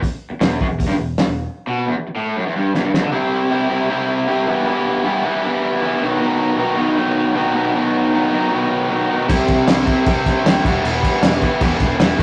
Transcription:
0.02 muted overdriven electric guitar stroke, muted picked electric bass stroke, kick, open hi-hat
0.31 muted picked electric bass stroke, muted overdriven electric guitar stroke
0.41 picked electric bass E1, overdriven electric guitar E2, snare, open hi-hat
0.61 picked electric bass F#1, overdriven electric guitar F#2, kick
0.69 picked electric bass E1, overdriven electric guitar E2
0.79 picked electric bass E1, overdriven electric guitar E2, kick, open hi-hat
0.87 picked electric bass G1, overdriven electric guitar G2, snare
0.97 picked electric bass E1, overdriven electric guitar E2
1.18 snare, open hi-hat
1.27 picked electric bass E1, overdriven electric guitar E2
1.67 overdriven electric guitar B2
1.86 overdriven electric guitar E2
1.97 overdriven electric guitar E2
2.07 muted overdriven electric guitar stroke
2.16 overdriven electric guitar A2
2.36 overdriven electric guitar F#2
2.46 overdriven electric guitar E2
2.56 overdriven electric guitar G2
2.75 overdriven electric guitar E2, snare
2.85 overdriven electric guitar G2
2.94 overdriven electric guitar E2, snare
3.03 overdriven electric guitar D3
3.12 overdriven electric guitar C3 G3 C4 E4
3.50 overdriven electric guitar C3 G3 C4 E4
3.69 overdriven electric guitar C3 G3 C4 E4
3.90 overdriven electric guitar C3 G3 C4 E4
4.27 overdriven electric guitar C3 G3 C4 E4
4.47 overdriven electric guitar E3 G3 B3 E4
4.66 overdriven electric guitar E3 G3 B3 E4
5.04 overdriven electric guitar E3 G3 B3 E4
5.23 overdriven electric guitar E3 G3 B3 E4
5.44 overdriven electric guitar E3 G3 B3 E4
5.82 overdriven electric guitar E3 G3 B3 E4
6.01 overdriven electric guitar B2 D#3 F#3 B3 D#4
6.20 overdriven electric guitar B2 D#3 F#3 B3 D#4
6.58 overdriven electric guitar B2 D#3 F#3 B3 D#4
6.76 overdriven electric guitar B2 D#3 F#3 B3 D#4
6.96 overdriven electric guitar B2 D#3 F#3 B3 D#4
7.35 overdriven electric guitar B2 D#3 F#3 B3 D#4
7.54 overdriven electric guitar B2 D#3 F#3 B3 D#4
7.74 overdriven electric guitar B2 D#3 F#3 B3 D#4
8.14 overdriven electric guitar B2 D#3 F#3 B3 D#4
8.32 overdriven electric guitar B2 D#3 F#3 B3 D#4
8.51 overdriven electric guitar B2 D#3 F#3 B3 D#4
8.89 overdriven electric guitar B2 D#3 F#3 B3 D#4
9.08 overdriven electric guitar B2 D#3 F#3 B3 D#4
9.27 picked electric bass C2, overdriven electric guitar C3 G3 C4 E4, kick, crash
9.48 picked electric bass C2, kick, crash
9.68 picked electric bass C2, overdriven electric guitar C3 G3 C4 E4, snare, crash
9.86 overdriven electric guitar C3 G3 C4 E4, kick, crash
10.05 overdriven electric guitar C3 G3 C4 E4, picked electric bass C3, kick, crash
10.26 kick, snare, crash
10.44 picked electric bass D#2, overdriven electric guitar C3 G3 C4 E4, snare, crash
10.64 picked electric bass E1, overdriven electric guitar E3 G3 B3 E4, kick, crash
10.83 picked electric bass E1, overdriven electric guitar E3 G3 B3 E4, crash
11.03 kick, crash
11.22 picked electric bass E1, overdriven electric guitar E3 G3 B3 E4, snare, crash
11.42 overdriven electric guitar E3 G3 B3 E4, kick, crash
11.61 picked electric bass E2, overdriven electric guitar E3 G3 B3 E4, kick, crash
11.80 picked electric bass E1, kick, snare, crash
11.99 picked electric bass E1, overdriven electric guitar E3 G3 B3 E4, snare, crash
12.18 picked electric bass B1, overdriven electric guitar B2 D#3 F#3 B3, kick, crash

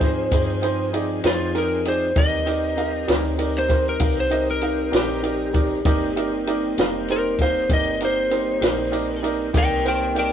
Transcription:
Already playing: fm bass G#2, tonewheel organ F3 C4 D#4 G#4, lead electric guitar C5
0.00 upright piano D#4 G4 G#4 C5, kick, snare, ride
0.32 fm bass G2, upright piano D#4 G4 G#4 C5, kick, ride
0.62 upright piano D#4 G4 G#4 C5, ride
0.93 upright piano D#4 G4 G#4 D5, ride
1.24 fm bass F2, upright piano D#4 G4 G#4 C5, lead electric guitar F4, snare, ride
1.54 upright piano D#4 G4 G#4 A#4, lead electric guitar A#4, ride
1.85 upright piano D#4 G4 G#4 D5, lead electric guitar C5, ride
2.15 fm bass D#2, tonewheel organ G3 C4 D#4 A#4, upright piano D#4 G4 A#4 D5, lead electric guitar D#5, kick, ride
2.46 upright piano D#4 G4 A#4 D5, ride
2.77 upright piano D#4 G4 A#4 F5, ride
3.08 fm bass D2, upright piano D#4 G4 A#4 D5, lead electric guitar C#5, snare, ride
3.38 upright piano D#4 G4 A#4 D5, ride
3.59 lead electric guitar C5
3.68 upright piano D#4 G4 A#4 C5, kick, snare, ride
3.89 lead electric guitar A#4
3.99 fm bass C2, upright piano D#4 G4 A#4 F5, kick, ride
4.20 lead electric guitar C5
4.30 upright piano D#4 G4 A#4 D#5, ride
4.51 lead electric guitar A#4
4.62 upright piano D#4 G4 A#4 F5, ride
4.91 fm bass A#1, upright piano D#4 G4 A#4 D5, snare, ride
4.97 lead electric guitar G4
5.23 upright piano D#4 G4 A#4 D5, ride
5.53 upright piano D#4 G4 A#4 D5, kick, ride
5.85 fm bass G1, tonewheel organ G3 A#3 C4 D#4, upright piano D#4 G4 A#4 D5, kick, ride
6.16 upright piano D#4 G4 A#4 D5, ride
6.47 upright piano D#4 G4 A#4 D5, ride
6.78 fm bass F1, upright piano D#4 G4 A#4 F5, snare, ride
7.08 upright piano D#4 G4 A#4 C5, lead electric guitar A#4, ride
7.39 upright piano D#4 G4 A#4 F5, lead electric guitar C5, kick, snare, ride
7.70 fm bass G1, upright piano D#4 G4 A#4 D5, lead electric guitar D#5, kick, ride
8.00 upright piano D#4 G4 A#4 D5, ride
8.05 lead electric guitar C5
8.31 upright piano D#4 G4 A#4 C5, ride
8.61 fm bass A#1, upright piano D#4 G4 A#4 D5, snare, ride
8.92 upright piano D#4 G4 A#4 D5, ride
9.23 upright piano D#4 G4 A#4 D5, ride
9.53 fm bass C2, tonewheel organ G3 A#3 C4 D#4, upright piano D#4 G4 A#4 D5, lead electric guitar A#4, kick, ride
9.58 lead electric guitar G5
9.84 upright piano D#4 G4 A#4 C5, ride
9.88 lead electric guitar A#4 G5
10.15 upright piano D#4 G4 A#4 D5, ride
10.19 lead electric guitar A#4 G5

